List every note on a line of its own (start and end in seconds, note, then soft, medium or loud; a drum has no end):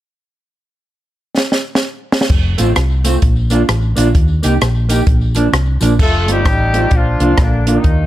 1.38 snare medium
1.52 snare soft
1.75 snare medium
2.12 snare loud
2.21 snare medium
2.30 2.54 F1 loud
2.30 kick loud
2.30 crash medium
2.58 2.74 A1 medium
2.58 2.68 A3 medium
2.58 2.69 C4 medium
2.58 2.69 F4 loud
2.58 closed hi-hat loud
2.58 tambourine medium
2.76 3.16 C2 loud
2.76 cross-stick loud
2.76 closed hi-hat medium
3.04 3.15 A3 medium
3.04 3.15 C4 medium
3.04 3.16 F4 medium
3.04 closed hi-hat medium
3.04 tambourine loud
3.22 3.62 A#1 loud
3.22 kick loud
3.22 closed hi-hat medium
3.50 3.61 A#3 medium
3.50 3.61 D4 medium
3.50 3.62 F4 medium
3.50 closed hi-hat medium
3.50 tambourine medium
3.69 3.93 A1 medium
3.69 cross-stick loud
3.69 closed hi-hat medium
3.96 4.12 A#1 medium
3.96 4.07 A#3 medium
3.96 4.07 D4 medium
3.96 4.08 F4 medium
3.96 closed hi-hat loud
3.96 tambourine medium
4.15 4.39 D#2 medium
4.15 kick medium
4.15 closed hi-hat medium
4.43 4.59 C2 medium
4.43 4.53 A#3 medium
4.43 4.54 D#4 medium
4.43 4.54 G4 medium
4.43 closed hi-hat loud
4.43 tambourine medium
4.61 5.00 A#1 loud
4.61 cross-stick loud
4.61 closed hi-hat medium
4.89 4.99 A#3 medium
4.89 5.00 D#4 medium
4.89 5.01 G4 medium
4.89 closed hi-hat medium
4.89 tambourine loud
5.07 5.46 A#1 loud
5.07 kick loud
5.07 closed hi-hat medium
5.35 5.46 F3 medium
5.35 5.46 A#3 medium
5.35 5.47 D4 loud
5.35 closed hi-hat medium
5.35 tambourine medium
5.53 5.77 C2 medium
5.53 cross-stick loud
5.53 closed hi-hat medium
5.81 5.96 A#1 medium
5.81 5.91 F3 medium
5.81 5.92 A#3 medium
5.81 5.92 D4 medium
5.81 closed hi-hat loud
5.81 tambourine medium
5.99 6.27 A3 loud
5.99 6.27 F4 medium
5.99 6.27 A4 loud
5.99 kick loud
5.99 crash medium
6.28 6.43 G1 medium
6.28 6.93 G3 medium
6.28 6.38 A3 medium
6.28 6.39 C4 medium
6.28 6.92 D#4 medium
6.28 6.39 F4 medium
6.28 6.93 G4 loud
6.28 closed hi-hat loud
6.45 6.85 A1 medium
6.45 kick loud
6.45 cross-stick loud
6.45 closed hi-hat medium
6.74 6.84 A3 medium
6.74 6.85 C4 medium
6.74 6.85 F4 medium
6.74 closed hi-hat medium
6.91 7.16 A#1 medium
6.91 7.39 D4 medium
6.91 kick loud
6.91 closed hi-hat medium
6.96 7.40 F3 medium
6.96 7.40 F4 loud
7.20 7.35 C2 medium
7.20 7.31 A#3 medium
7.20 7.31 D4 medium
7.20 7.31 F4 loud
7.20 closed hi-hat medium
7.37 7.77 A#1 medium
7.37 7.68 D3 medium
7.37 7.65 A#3 medium
7.37 7.68 D4 medium
7.37 kick loud
7.37 cross-stick loud
7.37 closed hi-hat medium
7.66 8.06 D#3 medium
7.66 7.77 A#3 medium
7.66 8.06 A#3 medium
7.66 7.77 D4 medium
7.66 8.06 D#4 medium
7.66 7.78 F4 medium
7.66 closed hi-hat loud
7.84 8.06 D#2 medium
7.84 kick medium
7.84 closed hi-hat medium